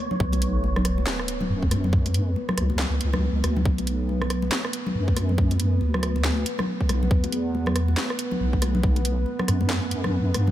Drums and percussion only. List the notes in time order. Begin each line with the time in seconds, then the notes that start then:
0.11 low conga
0.20 kick
0.33 closed hi-hat, high conga
0.42 closed hi-hat
0.64 high conga
0.76 cross-stick, low conga
0.85 cross-stick, closed hi-hat
0.98 high conga
1.07 snare, clap
1.19 cross-stick
1.28 closed hi-hat
1.40 high conga, low conga
1.63 kick
1.71 cross-stick, open hi-hat, high conga
1.84 low conga
1.93 kick
2.06 closed hi-hat, high conga
2.14 closed hi-hat
2.36 high conga
2.49 cross-stick, low conga
2.58 cross-stick, closed hi-hat
2.70 high conga
2.79 snare, clap
3.01 closed hi-hat
3.13 cross-stick, high conga, low conga
3.44 cross-stick, open hi-hat, high conga
3.56 low conga
3.65 kick
3.78 closed hi-hat, high conga
3.87 closed hi-hat
4.09 high conga
4.22 cross-stick, low conga
4.30 cross-stick, closed hi-hat
4.42 high conga
4.52 snare, clap
4.65 cross-stick
4.73 closed hi-hat
4.86 high conga, low conga
5.08 kick
5.16 cross-stick, open hi-hat, high conga
5.29 low conga
5.38 kick
5.51 closed hi-hat, high conga
5.60 closed hi-hat
5.81 high conga
5.94 cross-stick, low conga
6.03 cross-stick, closed hi-hat
6.16 high conga
6.24 snare, clap
6.46 closed hi-hat
6.58 cross-stick, high conga, low conga
6.81 kick
6.89 cross-stick, open hi-hat, high conga
7.03 low conga
7.11 kick
7.24 closed hi-hat, high conga
7.32 closed hi-hat
7.55 high conga
7.66 cross-stick, low conga
7.76 cross-stick, closed hi-hat
7.88 high conga
7.97 snare, clap
8.10 cross-stick
8.19 closed hi-hat
8.31 high conga, low conga
8.53 kick
8.62 cross-stick, open hi-hat, high conga
8.75 low conga
8.83 kick
8.96 closed hi-hat, high conga
9.05 closed hi-hat
9.26 high conga
9.39 cross-stick, low conga
9.48 cross-stick, closed hi-hat
9.61 high conga
9.70 snare, clap
9.91 closed hi-hat
10.04 cross-stick, high conga, low conga
10.34 cross-stick, open hi-hat, high conga
10.47 low conga